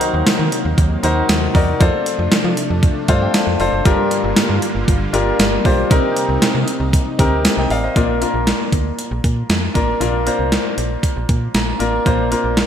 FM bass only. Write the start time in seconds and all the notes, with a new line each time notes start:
0.14 D#2
0.27 D#3
0.39 D#3
0.65 D#2
0.78 D#2
1.04 D#2
1.29 D#2
1.55 E2
1.81 F2
2.19 F2
2.32 F3
2.44 F3
2.70 F2
3.09 G2
3.47 F2
3.60 F1
3.73 F#1
3.86 G1
4.24 G1
4.37 G2
4.50 G2
4.75 G1
4.88 G1
5.14 G1
5.39 G1
5.65 B1
5.91 C2
6.29 C2
6.42 C3
6.55 C3
6.80 C2
7.19 D2
7.57 C2
7.70 A1
7.96 A#1
8.34 A#1
8.72 D2
9.11 A#1
9.24 A#2
9.50 F2
9.75 A1
10.01 A#1
10.39 C2
10.78 A#1
11.16 A#1
11.29 A#2
11.55 A#1
11.80 A1
12.06 A#1
12.44 A#1